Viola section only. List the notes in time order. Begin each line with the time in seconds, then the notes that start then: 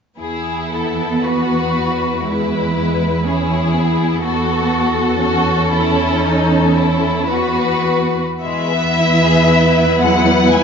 0.20 B3
2.26 G#3
2.77 G#3
3.27 C#4
3.77 B3
4.24 B3
5.21 C#4
7.28 B3
8.43 B3 E4